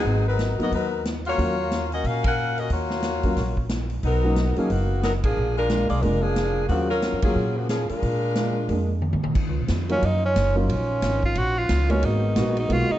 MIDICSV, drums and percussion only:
0, 0, Header, 1, 2, 480
1, 0, Start_track
1, 0, Key_signature, -6, "minor"
1, 0, Tempo, 332779
1, 74, Time_signature, 4, 2, 24, 8
1, 18732, End_track
2, 0, Start_track
2, 0, Title_t, "Drums"
2, 562, Note_on_c, 9, 38, 58
2, 562, Note_on_c, 9, 42, 54
2, 706, Note_off_c, 9, 38, 0
2, 706, Note_off_c, 9, 42, 0
2, 860, Note_on_c, 9, 46, 37
2, 1004, Note_off_c, 9, 46, 0
2, 1036, Note_on_c, 9, 36, 32
2, 1044, Note_on_c, 9, 46, 41
2, 1180, Note_off_c, 9, 36, 0
2, 1188, Note_off_c, 9, 46, 0
2, 1520, Note_on_c, 9, 38, 67
2, 1520, Note_on_c, 9, 42, 56
2, 1665, Note_off_c, 9, 38, 0
2, 1665, Note_off_c, 9, 42, 0
2, 1802, Note_on_c, 9, 46, 34
2, 1946, Note_off_c, 9, 46, 0
2, 1992, Note_on_c, 9, 36, 31
2, 2002, Note_on_c, 9, 46, 46
2, 2136, Note_off_c, 9, 36, 0
2, 2146, Note_off_c, 9, 46, 0
2, 2473, Note_on_c, 9, 38, 62
2, 2473, Note_on_c, 9, 42, 50
2, 2618, Note_off_c, 9, 38, 0
2, 2618, Note_off_c, 9, 42, 0
2, 2768, Note_on_c, 9, 46, 36
2, 2912, Note_off_c, 9, 46, 0
2, 2944, Note_on_c, 9, 36, 33
2, 2948, Note_on_c, 9, 46, 46
2, 3088, Note_off_c, 9, 36, 0
2, 3092, Note_off_c, 9, 46, 0
2, 3232, Note_on_c, 9, 51, 70
2, 3237, Note_on_c, 9, 36, 80
2, 3376, Note_off_c, 9, 51, 0
2, 3381, Note_off_c, 9, 36, 0
2, 3715, Note_on_c, 9, 46, 36
2, 3859, Note_off_c, 9, 46, 0
2, 3892, Note_on_c, 9, 46, 43
2, 3897, Note_on_c, 9, 36, 32
2, 4036, Note_off_c, 9, 46, 0
2, 4041, Note_off_c, 9, 36, 0
2, 4187, Note_on_c, 9, 38, 46
2, 4331, Note_off_c, 9, 38, 0
2, 4362, Note_on_c, 9, 38, 63
2, 4362, Note_on_c, 9, 42, 51
2, 4506, Note_off_c, 9, 38, 0
2, 4506, Note_off_c, 9, 42, 0
2, 4659, Note_on_c, 9, 46, 38
2, 4668, Note_on_c, 9, 36, 53
2, 4804, Note_off_c, 9, 46, 0
2, 4813, Note_off_c, 9, 36, 0
2, 4854, Note_on_c, 9, 38, 36
2, 4854, Note_on_c, 9, 46, 45
2, 4855, Note_on_c, 9, 36, 32
2, 4998, Note_off_c, 9, 38, 0
2, 4998, Note_off_c, 9, 46, 0
2, 4999, Note_off_c, 9, 36, 0
2, 5150, Note_on_c, 9, 36, 52
2, 5294, Note_off_c, 9, 36, 0
2, 5327, Note_on_c, 9, 38, 71
2, 5327, Note_on_c, 9, 42, 57
2, 5471, Note_off_c, 9, 38, 0
2, 5471, Note_off_c, 9, 42, 0
2, 5619, Note_on_c, 9, 46, 35
2, 5763, Note_off_c, 9, 46, 0
2, 5811, Note_on_c, 9, 46, 44
2, 5814, Note_on_c, 9, 36, 32
2, 5956, Note_off_c, 9, 46, 0
2, 5958, Note_off_c, 9, 36, 0
2, 6291, Note_on_c, 9, 38, 65
2, 6291, Note_on_c, 9, 42, 47
2, 6435, Note_off_c, 9, 38, 0
2, 6435, Note_off_c, 9, 42, 0
2, 6581, Note_on_c, 9, 46, 37
2, 6726, Note_off_c, 9, 46, 0
2, 6777, Note_on_c, 9, 46, 44
2, 6779, Note_on_c, 9, 36, 29
2, 6921, Note_off_c, 9, 46, 0
2, 6923, Note_off_c, 9, 36, 0
2, 7258, Note_on_c, 9, 38, 69
2, 7258, Note_on_c, 9, 42, 54
2, 7403, Note_off_c, 9, 38, 0
2, 7403, Note_off_c, 9, 42, 0
2, 7552, Note_on_c, 9, 51, 69
2, 7553, Note_on_c, 9, 36, 74
2, 7697, Note_off_c, 9, 51, 0
2, 7698, Note_off_c, 9, 36, 0
2, 8216, Note_on_c, 9, 38, 62
2, 8216, Note_on_c, 9, 42, 51
2, 8360, Note_off_c, 9, 38, 0
2, 8360, Note_off_c, 9, 42, 0
2, 8503, Note_on_c, 9, 46, 40
2, 8647, Note_off_c, 9, 46, 0
2, 8690, Note_on_c, 9, 46, 42
2, 8692, Note_on_c, 9, 36, 32
2, 8834, Note_off_c, 9, 46, 0
2, 8836, Note_off_c, 9, 36, 0
2, 9174, Note_on_c, 9, 38, 65
2, 9174, Note_on_c, 9, 42, 55
2, 9318, Note_off_c, 9, 38, 0
2, 9318, Note_off_c, 9, 42, 0
2, 9647, Note_on_c, 9, 36, 32
2, 9652, Note_on_c, 9, 46, 43
2, 9792, Note_off_c, 9, 36, 0
2, 9796, Note_off_c, 9, 46, 0
2, 10128, Note_on_c, 9, 38, 59
2, 10128, Note_on_c, 9, 42, 50
2, 10272, Note_off_c, 9, 38, 0
2, 10272, Note_off_c, 9, 42, 0
2, 10418, Note_on_c, 9, 51, 70
2, 10425, Note_on_c, 9, 36, 73
2, 10562, Note_off_c, 9, 51, 0
2, 10569, Note_off_c, 9, 36, 0
2, 11093, Note_on_c, 9, 38, 69
2, 11093, Note_on_c, 9, 42, 55
2, 11237, Note_off_c, 9, 38, 0
2, 11237, Note_off_c, 9, 42, 0
2, 11384, Note_on_c, 9, 46, 36
2, 11528, Note_off_c, 9, 46, 0
2, 11574, Note_on_c, 9, 36, 33
2, 11576, Note_on_c, 9, 46, 43
2, 11719, Note_off_c, 9, 36, 0
2, 11720, Note_off_c, 9, 46, 0
2, 12050, Note_on_c, 9, 38, 63
2, 12050, Note_on_c, 9, 42, 52
2, 12194, Note_off_c, 9, 38, 0
2, 12194, Note_off_c, 9, 42, 0
2, 12530, Note_on_c, 9, 46, 43
2, 12531, Note_on_c, 9, 36, 32
2, 12675, Note_off_c, 9, 46, 0
2, 12676, Note_off_c, 9, 36, 0
2, 13005, Note_on_c, 9, 48, 47
2, 13149, Note_off_c, 9, 48, 0
2, 13165, Note_on_c, 9, 48, 59
2, 13309, Note_off_c, 9, 48, 0
2, 13320, Note_on_c, 9, 48, 71
2, 13464, Note_off_c, 9, 48, 0
2, 13487, Note_on_c, 9, 49, 70
2, 13492, Note_on_c, 9, 36, 70
2, 13632, Note_off_c, 9, 49, 0
2, 13636, Note_off_c, 9, 36, 0
2, 13966, Note_on_c, 9, 38, 68
2, 13966, Note_on_c, 9, 44, 56
2, 13966, Note_on_c, 9, 51, 62
2, 13973, Note_on_c, 9, 36, 21
2, 14110, Note_off_c, 9, 38, 0
2, 14110, Note_off_c, 9, 44, 0
2, 14110, Note_off_c, 9, 51, 0
2, 14117, Note_off_c, 9, 36, 0
2, 14270, Note_on_c, 9, 51, 46
2, 14414, Note_off_c, 9, 51, 0
2, 14458, Note_on_c, 9, 36, 25
2, 14460, Note_on_c, 9, 51, 59
2, 14602, Note_off_c, 9, 36, 0
2, 14605, Note_off_c, 9, 51, 0
2, 14940, Note_on_c, 9, 36, 20
2, 14940, Note_on_c, 9, 38, 67
2, 14940, Note_on_c, 9, 44, 54
2, 14940, Note_on_c, 9, 51, 66
2, 15084, Note_off_c, 9, 36, 0
2, 15085, Note_off_c, 9, 38, 0
2, 15085, Note_off_c, 9, 44, 0
2, 15085, Note_off_c, 9, 51, 0
2, 15420, Note_on_c, 9, 36, 22
2, 15425, Note_on_c, 9, 51, 60
2, 15564, Note_off_c, 9, 36, 0
2, 15569, Note_off_c, 9, 51, 0
2, 15897, Note_on_c, 9, 38, 61
2, 15897, Note_on_c, 9, 44, 62
2, 15897, Note_on_c, 9, 51, 66
2, 15898, Note_on_c, 9, 36, 19
2, 16042, Note_off_c, 9, 36, 0
2, 16042, Note_off_c, 9, 38, 0
2, 16042, Note_off_c, 9, 44, 0
2, 16042, Note_off_c, 9, 51, 0
2, 16194, Note_on_c, 9, 36, 60
2, 16338, Note_off_c, 9, 36, 0
2, 16375, Note_on_c, 9, 51, 56
2, 16379, Note_on_c, 9, 36, 21
2, 16520, Note_off_c, 9, 51, 0
2, 16523, Note_off_c, 9, 36, 0
2, 16861, Note_on_c, 9, 38, 70
2, 16861, Note_on_c, 9, 44, 52
2, 16861, Note_on_c, 9, 51, 73
2, 16862, Note_on_c, 9, 36, 21
2, 17005, Note_off_c, 9, 38, 0
2, 17005, Note_off_c, 9, 44, 0
2, 17005, Note_off_c, 9, 51, 0
2, 17006, Note_off_c, 9, 36, 0
2, 17160, Note_on_c, 9, 51, 46
2, 17304, Note_off_c, 9, 51, 0
2, 17345, Note_on_c, 9, 36, 19
2, 17346, Note_on_c, 9, 51, 65
2, 17490, Note_off_c, 9, 36, 0
2, 17490, Note_off_c, 9, 51, 0
2, 17826, Note_on_c, 9, 38, 67
2, 17826, Note_on_c, 9, 44, 61
2, 17826, Note_on_c, 9, 51, 65
2, 17828, Note_on_c, 9, 36, 19
2, 17970, Note_off_c, 9, 38, 0
2, 17970, Note_off_c, 9, 44, 0
2, 17970, Note_off_c, 9, 51, 0
2, 17973, Note_off_c, 9, 36, 0
2, 18125, Note_on_c, 9, 51, 47
2, 18269, Note_off_c, 9, 51, 0
2, 18312, Note_on_c, 9, 36, 25
2, 18314, Note_on_c, 9, 51, 60
2, 18457, Note_off_c, 9, 36, 0
2, 18458, Note_off_c, 9, 51, 0
2, 18732, End_track
0, 0, End_of_file